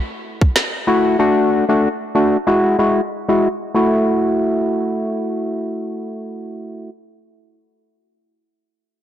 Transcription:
0.41 kick medium
0.56 snare loud
0.87 1.17 A3 medium
0.87 1.17 E4 medium
0.87 1.17 F#4 medium
1.19 1.65 A3 medium
1.19 1.65 D4 medium
1.19 1.65 F#4 loud
1.69 1.88 A3 medium
1.69 1.89 D4 medium
1.69 1.89 F#4 medium
2.15 2.37 A3 medium
2.15 2.37 D4 medium
2.15 2.37 F#4 medium
2.47 2.77 G#3 medium
2.47 2.77 E4 medium
2.47 2.77 F#4 loud
2.79 3.01 G#3 medium
2.79 3.01 E4 medium
2.79 3.01 F#4 medium
3.29 3.48 G#3 medium
3.29 3.48 E4 medium
3.29 3.48 F#4 medium
3.74 6.90 A3 medium
3.74 6.90 E4 medium
3.74 6.91 F#4 medium

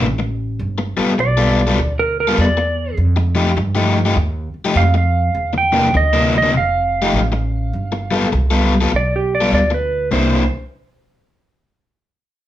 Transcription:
0.00 0.58 A1 medium
0.19 muted overdriven electric guitar stroke medium
0.59 0.95 G1 medium
0.78 muted overdriven electric guitar stroke soft
0.97 1.11 G3 medium
0.97 1.11 B3 medium
0.97 1.11 F4 medium
0.97 1.12 A4 medium
0.97 muted upright bass stroke soft
1.18 1.77 B1 medium
1.18 1.96 D5 medium
1.18 muted overdriven electric guitar stroke soft
1.37 1.60 G3 medium
1.37 1.60 B3 medium
1.37 1.60 F4 medium
1.37 1.60 A4 medium
1.67 1.78 G3 medium
1.67 1.78 B3 medium
1.67 1.78 F4 medium
1.67 1.78 A4 medium
1.78 2.36 D2 medium
1.78 muted overdriven electric guitar stroke soft
1.99 2.18 A#4 medium
2.20 2.38 A#4 medium
2.27 2.44 G3 medium
2.27 2.44 B3 medium
2.27 2.44 F4 medium
2.27 2.44 A4 medium
2.38 2.95 E2 medium
2.38 2.97 D5 medium
2.57 muted overdriven electric guitar stroke medium
2.97 3.55 F2 medium
3.16 muted overdriven electric guitar stroke medium
3.35 3.49 F3 medium
3.35 3.49 A3 medium
3.35 3.49 D#4 medium
3.35 3.50 G4 loud
3.56 4.14 G2 medium
3.56 muted overdriven electric guitar stroke soft
3.75 3.98 F3 medium
3.75 3.98 A3 medium
3.75 3.98 D#4 medium
3.75 3.97 G4 medium
4.05 4.15 F3 medium
4.05 4.16 A3 medium
4.05 4.16 D#4 medium
4.05 4.16 G4 medium
4.16 4.51 D#2 medium
4.16 muted overdriven electric guitar stroke soft
4.54 muted upright bass stroke soft
4.65 4.82 F3 medium
4.65 4.82 A3 medium
4.65 4.82 D#4 medium
4.65 4.81 G4 medium
4.75 5.33 F2 medium
4.75 4.96 F5 medium
4.94 5.54 F5 medium
4.94 muted overdriven electric guitar stroke soft
5.35 5.92 E2 medium
5.53 muted overdriven electric guitar stroke soft
5.58 5.95 G5 medium
5.72 5.87 C3 medium
5.72 5.87 E3 medium
5.72 5.87 A#3 loud
5.72 5.87 D4 medium
5.94 6.52 D2 medium
5.94 6.34 D#5 loud
5.94 muted overdriven electric guitar stroke soft
6.13 6.36 C3 medium
6.13 6.36 E3 medium
6.13 6.36 A#3 medium
6.13 6.35 D4 medium
6.38 6.55 D#5 medium
6.43 6.54 C3 medium
6.43 6.53 E3 medium
6.43 6.53 A#3 medium
6.43 6.53 D4 medium
6.53 7.11 F1 medium
6.53 muted overdriven electric guitar stroke soft
6.57 8.30 F5 loud
7.02 7.19 F3 medium
7.02 7.19 A3 medium
7.02 7.19 D#4 medium
7.02 7.19 G4 medium
7.13 7.71 A1 medium
7.32 muted overdriven electric guitar stroke medium
7.73 8.31 G1 medium
7.92 muted overdriven electric guitar stroke soft
8.11 8.25 G3 medium
8.11 8.25 B3 medium
8.11 8.25 F4 loud
8.11 8.26 A4 loud
8.32 8.91 C2 medium
8.32 muted overdriven electric guitar stroke soft
8.51 8.74 G3 medium
8.51 8.74 B3 medium
8.51 8.73 F4 medium
8.51 8.73 A4 medium
8.81 8.90 G3 medium
8.81 8.90 B3 medium
8.81 8.91 F4 medium
8.81 8.91 A4 medium
8.91 9.50 B1 medium
8.91 muted overdriven electric guitar stroke soft
8.96 9.14 D5 medium
9.16 9.33 G4 medium
9.35 9.53 D5 medium
9.41 9.58 G3 medium
9.41 9.58 B3 medium
9.41 9.58 F4 medium
9.41 9.57 A4 medium
9.52 10.10 D2 medium
9.52 9.72 D5 medium
9.71 10.12 B4 medium
9.71 muted overdriven electric guitar stroke soft
10.11 10.47 C2 medium
10.11 10.42 C3 medium
10.11 10.42 A#3 loud
10.11 10.42 D4 medium
10.11 10.43 E4 medium
10.11 10.48 C5 medium

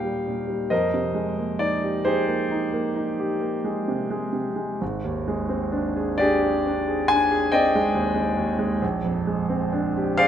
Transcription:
0.00 0.66 D#2 soft
0.00 0.19 A#2 soft
0.00 0.04 G3 soft
0.00 0.40 G3 soft
0.00 0.73 A#3 soft
0.00 0.74 D#4 soft
0.00 0.74 G4 medium
0.00 0.70 F5 medium
0.00 0.73 G5 medium
0.28 0.63 A#2 soft
0.47 0.70 G3 soft
0.70 4.77 F2 soft
0.70 1.57 A#4 medium
0.70 1.56 C5 soft
0.70 1.60 D#5 medium
0.94 1.29 C3 soft
1.14 1.51 G#3 soft
1.38 1.74 A#3 soft
1.59 1.96 D#4 soft
1.59 2.05 D5 medium
1.84 2.04 G4 soft
2.05 2.42 D#4 soft
2.05 3.18 G4 medium
2.05 4.31 G#4 medium
2.05 4.34 C5 medium
2.28 2.64 A#3 soft
2.51 2.88 D#4 soft
2.73 3.10 A#3 soft
2.96 3.33 D#4 soft
3.20 3.57 G4 soft
3.41 3.78 A#3 soft
3.64 4.02 G#3 soft
3.88 4.25 C3 soft
4.10 4.48 G#3 soft
4.33 4.71 C3 soft
4.56 4.80 G#3 soft
4.81 8.78 G#1 soft
5.04 5.42 D#2 soft
5.28 5.65 G#3 soft
5.49 5.87 C4 soft
5.72 6.11 D4 soft
5.97 6.18 G#4 soft
6.18 6.58 D4 soft
6.18 7.07 G4 medium
6.18 6.41 G#4 medium
6.18 7.10 D5 medium
6.42 6.80 G#4 soft
6.67 7.03 D4 medium
6.88 7.24 G#4 soft
7.08 7.45 D4 soft
7.08 7.52 G#5 loud
7.32 7.66 G#4 medium
7.52 7.87 C4 medium
7.52 8.78 D5 medium
7.52 8.78 D#5 medium
7.52 8.81 G5 medium
7.75 8.09 G#3 soft
7.95 8.29 D#2 soft
8.14 8.50 G#3 soft
8.37 8.73 D#2 soft
8.59 8.82 G#3 soft
8.82 10.28 A#1 medium
9.04 9.41 F2 soft
9.27 9.64 G#3 soft
9.49 9.87 C4 soft
9.73 10.10 D4 soft
9.97 10.28 G4 soft
10.18 10.28 G#4 medium
10.18 10.28 C5 medium
10.18 10.28 D5 medium
10.18 10.28 F5 loud

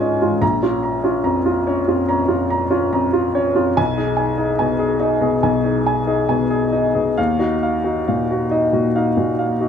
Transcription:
0.00 0.22 G#2 soft
0.00 0.45 C#4 soft
0.00 0.22 F4 soft
0.00 0.44 D#5 soft
0.00 0.44 G#5 soft
0.22 0.42 G#2 soft
0.22 0.42 F4 soft
0.41 2.04 A#1 soft
0.41 0.75 A#5 medium
0.62 0.95 C#4 soft
0.62 0.95 F4 soft
0.83 1.16 A#5 soft
1.04 1.37 C#4 soft
1.04 1.37 F4 soft
1.24 1.57 F2 soft
1.24 1.58 A#5 soft
1.46 1.79 F4 soft
1.67 2.01 C#4 soft
1.67 2.00 C#5 soft
1.88 2.22 F2 soft
1.88 2.21 F4 soft
2.09 2.43 C#4 soft
2.09 2.42 A#5 soft
2.28 2.63 F2 soft
2.28 2.63 F4 soft
2.50 2.85 A#5 soft
2.70 3.05 C#4 soft
2.70 3.05 F4 soft
2.93 3.27 F2 soft
2.93 3.27 A#5 soft
3.13 3.47 F4 soft
3.35 3.68 C#4 soft
3.35 3.68 C#5 soft
3.55 3.77 F2 soft
3.55 3.77 F4 soft
3.77 5.41 B1 medium
3.77 4.10 G#5 medium
3.97 4.31 D#4 soft
3.97 4.31 G#4 soft
4.17 4.51 G#5 soft
4.37 4.72 D#4 soft
4.37 4.72 G#4 soft
4.59 4.93 B2 soft
4.59 4.93 G#5 soft
4.79 5.14 G#4 soft
5.00 5.35 D#4 soft
5.00 5.35 D#5 soft
5.21 5.56 B2 soft
5.21 5.56 G#4 soft
5.43 7.13 B1 soft
5.43 5.78 G#5 soft
5.64 5.99 D#4 soft
5.64 5.99 G#4 soft
5.87 6.21 G#5 soft
6.07 6.42 D#4 soft
6.07 6.43 G#4 soft
6.29 6.64 B2 soft
6.29 6.64 G#5 soft
6.50 6.86 G#4 soft
6.73 7.09 D#4 soft
6.73 7.08 D#5 soft
6.95 7.18 B2 soft
6.95 7.17 G#4 soft
7.18 8.92 D#2 soft
7.18 7.54 F5 medium
7.39 7.76 D#4 soft
7.39 7.76 F#4 soft
7.63 7.99 F5 soft
7.84 8.21 D#4 soft
7.84 8.21 F#4 soft
8.08 8.44 A#2 soft
8.08 8.43 F5 soft
8.31 8.66 F#4 soft
8.51 8.87 D#4 soft
8.51 8.87 D#5 soft
8.73 9.09 A#2 soft
8.73 9.09 F#4 soft
8.95 9.31 D#4 soft
8.95 9.31 F5 soft
9.17 9.53 A#2 soft
9.17 9.53 F#4 soft
9.39 9.69 F5 soft
9.61 9.69 D#4 soft
9.61 9.69 F#4 soft

